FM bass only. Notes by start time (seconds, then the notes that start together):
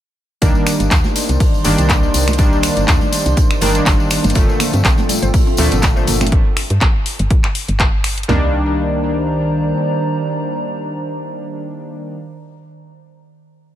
0.42 C2
0.80 G1
0.91 D#2
1.29 C2
1.65 G1
1.78 C2
2.14 C2
2.77 G1
2.88 D#2
3.26 C2
3.62 G1
3.86 G1
4.24 G1
4.35 G1
4.73 G2
4.85 A#1
5.23 G1
5.58 D2
5.72 G1
6.08 G1
6.70 G2
6.81 A#1
7.19 G1
7.68 G1
8.29 C2